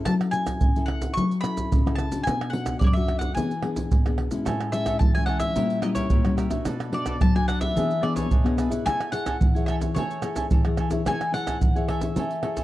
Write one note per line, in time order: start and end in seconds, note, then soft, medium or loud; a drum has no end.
0.00 0.28 C#4 medium
0.00 0.28 E4 medium
0.00 0.28 A4 medium
0.05 0.58 F#3 medium
0.05 0.13 A5 loud
0.05 pandeiro medium
0.05 tamborim medium
0.05 maracas medium
0.05 surdo medium
0.21 pandeiro soft
0.21 tamborim medium
0.21 maracas soft
0.31 0.70 C#4 soft
0.31 0.70 E4 medium
0.31 0.70 A4 medium
0.31 0.83 G#5 medium
0.31 pandeiro medium
0.31 maracas medium
0.47 pandeiro medium
0.47 tamborim medium
0.47 maracas medium
0.47 surdo soft
0.61 1.13 C#3 medium
0.61 pandeiro medium
0.61 maracas medium
0.61 surdo loud
0.76 1.26 C#4 medium
0.76 1.26 E4 medium
0.76 1.26 A4 medium
0.76 pandeiro soft
0.76 maracas soft
0.86 1.15 F#5 medium
0.86 pandeiro medium
0.86 tamborim medium
1.02 pandeiro medium
1.02 maracas medium
1.02 surdo soft
1.14 1.68 F#3 medium
1.14 1.40 C#6 loud
1.14 pandeiro medium
1.14 maracas medium
1.14 surdo medium
1.31 pandeiro soft
1.31 maracas soft
1.41 1.80 C#4 medium
1.41 1.80 E4 medium
1.41 1.80 A4 medium
1.41 1.93 B5 loud
1.41 pandeiro medium
1.41 tamborim medium
1.41 maracas medium
1.57 pandeiro medium
1.57 maracas medium
1.57 surdo soft
1.71 2.23 C#3 medium
1.71 pandeiro medium
1.71 maracas medium
1.71 surdo medium
1.86 2.08 C#4 medium
1.86 2.08 E4 medium
1.86 2.08 A4 medium
1.86 pandeiro soft
1.86 tamborim medium
1.86 maracas soft
1.95 2.22 A5 medium
1.95 pandeiro medium
1.95 tamborim medium
1.95 maracas medium
2.11 2.48 A3 medium
2.11 2.48 D4 medium
2.11 2.49 F#4 medium
2.11 pandeiro medium
2.11 maracas medium
2.11 surdo soft
2.23 2.78 B2 medium
2.23 2.50 G#5 medium
2.23 pandeiro medium
2.23 tamborim medium
2.23 maracas medium
2.23 surdo medium
2.41 pandeiro soft
2.41 tamborim medium
2.41 maracas soft
2.50 2.79 A3 soft
2.50 2.77 F#5 medium
2.50 pandeiro medium
2.54 2.79 D4 medium
2.54 2.79 F#4 medium
2.66 pandeiro medium
2.66 tamborim medium
2.66 maracas medium
2.66 surdo soft
2.79 3.33 F#2 medium
2.79 2.83 D5 medium
2.79 pandeiro medium
2.79 maracas medium
2.79 surdo loud
2.84 2.87 C#5 medium
2.84 2.94 D5 medium
2.93 3.34 A3 medium
2.93 3.35 D4 medium
2.93 3.35 F#4 medium
2.93 3.18 E5 medium
2.93 pandeiro soft
2.93 maracas soft
3.08 pandeiro medium
3.08 tamborim medium
3.19 3.34 F#5 medium
3.19 pandeiro medium
3.19 maracas medium
3.19 surdo soft
3.35 3.88 E3 medium
3.35 3.52 B3 medium
3.35 3.52 D4 medium
3.35 3.53 G#4 medium
3.35 4.14 G#5 medium
3.35 pandeiro medium
3.35 maracas medium
3.35 surdo medium
3.51 pandeiro soft
3.51 maracas soft
3.63 3.89 B3 medium
3.63 3.89 D4 medium
3.63 3.89 G#4 medium
3.63 pandeiro medium
3.63 tamborim medium
3.76 pandeiro medium
3.76 maracas medium
3.76 surdo soft
3.91 4.43 B2 medium
3.91 pandeiro medium
3.91 maracas medium
3.91 surdo loud
4.06 4.28 B3 medium
4.06 4.28 D4 medium
4.06 4.29 G#4 medium
4.06 pandeiro soft
4.06 tamborim medium
4.06 maracas soft
4.18 pandeiro medium
4.18 tamborim medium
4.31 4.68 G#3 medium
4.31 4.68 C#4 medium
4.31 4.69 E4 medium
4.31 pandeiro medium
4.31 maracas medium
4.31 surdo soft
4.45 4.98 A2 medium
4.45 4.71 A4 medium
4.45 4.72 C#5 medium
4.45 4.72 E5 medium
4.45 4.73 G#5 medium
4.45 pandeiro medium
4.45 tamborim medium
4.45 maracas medium
4.45 surdo medium
4.60 pandeiro soft
4.60 tamborim medium
4.60 maracas soft
4.72 5.10 G#3 medium
4.72 5.10 C#4 medium
4.72 5.10 E4 medium
4.72 4.84 A4 soft
4.72 4.85 C#5 soft
4.72 4.98 E5 medium
4.72 4.86 E5 medium
4.72 4.86 G#5 medium
4.72 pandeiro medium
4.72 maracas medium
4.85 4.95 A4 medium
4.85 4.95 C#5 medium
4.85 4.96 E5 medium
4.85 4.96 G#5 medium
4.85 pandeiro medium
4.85 tamborim medium
4.85 maracas medium
4.85 surdo soft
4.99 5.53 E3 medium
4.99 5.14 A5 medium
4.99 pandeiro medium
4.99 maracas medium
4.99 surdo loud
5.14 5.54 G#3 medium
5.14 5.54 C#4 medium
5.14 5.55 E4 medium
5.14 5.27 C#5 soft
5.14 5.27 E5 soft
5.14 5.27 G#5 soft
5.14 5.26 G#5 medium
5.14 pandeiro soft
5.14 maracas soft
5.26 5.40 A4 medium
5.26 5.41 C#5 medium
5.26 5.40 E5 medium
5.26 5.39 F#5 medium
5.26 5.39 G#5 medium
5.26 pandeiro medium
5.26 tamborim medium
5.40 5.55 C#5 soft
5.40 5.79 E5 medium
5.40 5.54 G#5 soft
5.40 pandeiro medium
5.40 maracas medium
5.40 surdo soft
5.56 6.08 A#2 medium
5.56 5.79 G3 medium
5.56 5.79 C#4 medium
5.56 5.79 E4 medium
5.56 5.81 G4 medium
5.56 5.82 A#4 medium
5.56 5.82 C#5 medium
5.56 5.83 E5 medium
5.56 pandeiro medium
5.56 maracas medium
5.56 surdo medium
5.70 pandeiro soft
5.70 maracas soft
5.82 6.20 G3 medium
5.82 6.21 C#4 medium
5.82 6.21 E4 medium
5.82 5.94 G4 soft
5.82 5.95 A#4 medium
5.82 5.95 C#5 medium
5.82 5.88 D#5 medium
5.82 5.95 E5 medium
5.82 pandeiro medium
5.82 tamborim medium
5.82 maracas medium
5.95 6.05 G4 medium
5.95 6.05 A#4 medium
5.95 6.34 C#5 medium
5.95 6.06 C#5 medium
5.95 6.06 E5 medium
5.95 pandeiro medium
5.95 maracas medium
5.95 surdo soft
6.10 6.63 A#2 medium
6.10 6.36 G4 soft
6.10 6.37 A#4 soft
6.10 6.37 C#5 soft
6.10 6.38 E5 medium
6.10 pandeiro medium
6.10 maracas medium
6.10 surdo medium
6.25 6.48 G3 medium
6.25 6.48 C#4 medium
6.25 6.48 E4 medium
6.25 pandeiro soft
6.25 tamborim medium
6.25 maracas soft
6.37 6.50 G4 medium
6.37 6.51 A#4 medium
6.37 6.50 C#5 medium
6.37 6.49 E5 medium
6.37 pandeiro medium
6.37 tamborim medium
6.37 maracas medium
6.50 6.88 A3 medium
6.50 6.88 D4 medium
6.50 6.88 F#4 medium
6.50 6.65 A#4 soft
6.50 6.64 C#5 soft
6.50 6.64 E5 medium
6.50 pandeiro medium
6.50 maracas medium
6.50 surdo soft
6.65 7.18 B2 medium
6.65 6.91 D4 medium
6.65 6.92 A4 medium
6.65 6.92 B4 medium
6.65 6.93 D5 medium
6.65 pandeiro medium
6.65 tamborim medium
6.65 maracas medium
6.65 surdo medium
6.80 pandeiro soft
6.80 tamborim medium
6.80 maracas soft
6.92 7.19 A3 soft
6.92 7.05 D4 soft
6.92 7.19 D4 medium
6.92 7.19 F#4 medium
6.92 7.05 A4 medium
6.92 7.06 B4 soft
6.92 7.19 D5 medium
6.92 7.06 D5 soft
6.92 pandeiro medium
7.06 7.16 D4 medium
7.06 7.16 A4 medium
7.06 7.16 B4 medium
7.06 7.16 D5 medium
7.06 pandeiro medium
7.06 tamborim medium
7.06 maracas medium
7.06 surdo soft
7.20 7.73 F#3 medium
7.20 7.34 A5 medium
7.20 pandeiro medium
7.20 maracas medium
7.20 surdo loud
7.34 7.74 A3 medium
7.34 7.74 D4 medium
7.34 7.74 F#4 medium
7.34 7.47 A4 soft
7.34 7.48 B4 soft
7.34 7.48 D5 soft
7.34 7.48 G#5 medium
7.34 pandeiro soft
7.34 maracas soft
7.47 7.61 D4 medium
7.47 7.61 A4 medium
7.47 7.60 B4 medium
7.47 7.59 D5 medium
7.47 7.60 F#5 medium
7.47 pandeiro medium
7.47 tamborim medium
7.47 maracas medium
7.60 7.75 A4 soft
7.60 7.74 B4 soft
7.60 7.74 D5 soft
7.60 8.04 E5 medium
7.60 pandeiro medium
7.60 maracas medium
7.60 surdo soft
7.76 8.28 E3 medium
7.76 7.92 B3 medium
7.76 8.01 D4 medium
7.76 7.92 D4 medium
7.76 7.92 G#4 medium
7.76 8.02 G#4 medium
7.76 8.03 B4 medium
7.76 8.03 E5 medium
7.76 pandeiro medium
7.76 maracas medium
7.76 surdo medium
7.91 pandeiro soft
7.91 maracas soft
8.02 8.28 B3 medium
8.02 8.29 D4 medium
8.02 8.14 D4 soft
8.02 8.29 G#4 medium
8.02 8.15 G#4 soft
8.02 8.15 B4 medium
8.02 8.15 D5 medium
8.02 8.16 E5 medium
8.02 pandeiro medium
8.02 tamborim medium
8.16 8.25 D4 medium
8.16 8.26 G#4 medium
8.16 8.26 B4 medium
8.16 8.55 C#5 medium
8.16 8.26 E5 medium
8.16 pandeiro medium
8.16 maracas medium
8.16 surdo soft
8.29 8.83 B2 medium
8.29 8.56 D4 soft
8.29 8.57 G#4 soft
8.29 8.57 B4 medium
8.29 8.58 E5 medium
8.29 pandeiro medium
8.29 maracas medium
8.29 surdo loud
8.44 8.68 B3 medium
8.44 8.68 D4 medium
8.44 8.68 G#4 medium
8.44 pandeiro soft
8.44 tamborim medium
8.44 maracas soft
8.57 8.71 D4 medium
8.57 8.71 G#4 medium
8.57 8.70 B4 medium
8.57 8.69 E5 medium
8.57 pandeiro medium
8.57 tamborim medium
8.57 maracas medium
8.70 9.08 E4 medium
8.70 9.08 G#4 medium
8.70 8.85 G#4 soft
8.70 8.85 B4 soft
8.70 9.09 C#5 medium
8.70 8.84 E5 medium
8.70 pandeiro medium
8.70 maracas medium
8.70 surdo soft
8.85 9.38 A3 medium
8.85 9.11 A4 medium
8.85 9.13 C#5 medium
8.85 9.13 E5 medium
8.85 9.12 G#5 loud
8.85 9.13 G#5 medium
8.85 pandeiro medium
8.85 tamborim medium
8.85 maracas medium
8.85 surdo medium
9.00 pandeiro soft
9.00 tamborim medium
9.00 maracas soft
9.12 9.39 E4 medium
9.12 9.39 G#4 medium
9.12 9.25 A4 soft
9.12 9.39 C#5 medium
9.12 9.25 C#5 soft
9.12 9.26 E5 soft
9.12 9.66 F#5 loud
9.12 9.26 G#5 medium
9.12 pandeiro medium
9.12 maracas medium
9.26 9.36 A4 medium
9.26 9.36 C#5 medium
9.26 9.36 E5 medium
9.26 9.36 G#5 medium
9.26 pandeiro medium
9.26 tamborim medium
9.26 maracas medium
9.26 surdo soft
9.40 9.93 E3 medium
9.40 pandeiro medium
9.40 maracas medium
9.40 surdo loud
9.55 10.06 E4 medium
9.55 10.06 G#4 medium
9.55 10.06 C#5 medium
9.55 9.67 C#5 soft
9.55 9.68 E5 soft
9.55 9.68 G#5 soft
9.55 pandeiro soft
9.55 maracas soft
9.66 9.81 A4 medium
9.66 9.82 C#5 medium
9.66 9.74 E5 medium
9.66 9.80 E5 medium
9.66 9.79 G#5 medium
9.66 pandeiro medium
9.66 tamborim medium
9.66 maracas medium
9.80 9.95 C#5 soft
9.80 9.95 E5 soft
9.80 9.94 G#5 soft
9.80 pandeiro medium
9.80 maracas medium
9.80 surdo soft
9.95 10.49 A3 medium
9.95 10.21 A4 medium
9.95 10.74 C#5 medium
9.95 10.22 C#5 medium
9.95 10.22 E5 medium
9.95 10.23 G#5 medium
9.95 pandeiro medium
9.95 maracas medium
9.95 surdo medium
10.11 pandeiro soft
10.11 maracas soft
10.22 10.60 E4 medium
10.22 10.60 G#4 medium
10.22 10.34 A4 soft
10.22 10.35 C#5 medium
10.22 10.61 C#5 medium
10.22 10.35 E5 medium
10.22 10.35 G#5 medium
10.22 pandeiro medium
10.22 tamborim medium
10.22 maracas medium
10.35 10.46 A4 medium
10.35 10.46 C#5 medium
10.35 10.46 E5 medium
10.35 10.46 G#5 medium
10.35 pandeiro medium
10.35 maracas medium
10.35 surdo soft
10.51 11.04 E3 medium
10.51 10.77 A4 soft
10.51 10.78 C#5 soft
10.51 10.79 E5 medium
10.51 10.79 G#5 soft
10.51 pandeiro medium
10.51 maracas medium
10.51 surdo loud
10.65 10.89 E4 medium
10.65 10.89 G#4 medium
10.65 10.89 C#5 medium
10.65 pandeiro soft
10.65 tamborim medium
10.65 maracas soft
10.77 10.91 A4 medium
10.77 10.92 C#5 medium
10.77 10.91 E5 medium
10.77 10.90 G#5 medium
10.77 pandeiro medium
10.77 tamborim medium
10.77 maracas medium
10.91 11.01 E4 medium
10.91 11.01 G#4 medium
10.91 11.02 C#5 medium
10.91 11.06 C#5 soft
10.91 11.05 E5 soft
10.91 11.05 G#5 soft
10.91 pandeiro medium
10.91 maracas medium
10.91 surdo soft
11.05 11.58 A3 medium
11.05 11.22 E4 medium
11.05 11.23 G#4 medium
11.05 11.32 A4 medium
11.05 11.23 C#5 medium
11.05 11.32 C#5 medium
11.05 11.33 E5 medium
11.05 11.33 G#5 loud
11.05 11.34 G#5 medium
11.05 pandeiro medium
11.05 tamborim medium
11.05 maracas medium
11.05 surdo medium
11.21 pandeiro soft
11.21 tamborim medium
11.21 maracas soft
11.32 11.59 E4 medium
11.32 11.59 G#4 soft
11.32 11.45 A4 soft
11.32 11.60 C#5 medium
11.32 11.46 C#5 soft
11.32 11.46 E5 soft
11.32 11.85 F#5 medium
11.32 11.47 G#5 soft
11.32 pandeiro medium
11.46 11.56 A4 medium
11.46 11.57 C#5 medium
11.46 11.57 E5 medium
11.46 11.57 G#5 medium
11.46 pandeiro medium
11.46 tamborim medium
11.46 maracas medium
11.46 surdo soft
11.61 12.14 E3 medium
11.61 pandeiro medium
11.61 maracas medium
11.61 surdo medium
11.75 12.26 E4 medium
11.75 12.26 G#4 medium
11.75 12.27 C#5 medium
11.75 11.87 C#5 soft
11.75 11.88 E5 soft
11.75 11.88 G#5 soft
11.75 pandeiro soft
11.75 maracas soft
11.88 12.01 A4 medium
11.88 12.02 C#5 medium
11.88 12.64 E5 medium
11.88 12.01 E5 medium
11.88 12.00 G#5 medium
11.88 pandeiro medium
11.88 tamborim medium
12.01 12.16 C#5 soft
12.01 12.16 E5 soft
12.01 12.15 G#5 soft
12.01 pandeiro medium
12.01 maracas medium
12.01 surdo soft
12.16 12.64 A3 medium
12.16 12.42 A4 medium
12.16 12.42 C#5 medium
12.16 12.44 E5 medium
12.16 12.45 G#5 medium
12.16 pandeiro medium
12.16 maracas medium
12.16 surdo medium
12.31 pandeiro soft
12.31 maracas soft
12.43 12.64 E4 medium
12.43 12.64 G#4 medium
12.43 12.55 A4 soft
12.43 12.55 C#5 medium
12.43 12.64 C#5 medium
12.43 12.56 E5 medium
12.43 12.56 G#5 medium
12.43 pandeiro medium
12.43 tamborim medium
12.56 12.64 A4 medium
12.56 12.64 C#5 medium
12.56 12.64 E5 medium
12.56 12.64 G#5 medium
12.56 pandeiro medium
12.56 maracas medium
12.56 surdo soft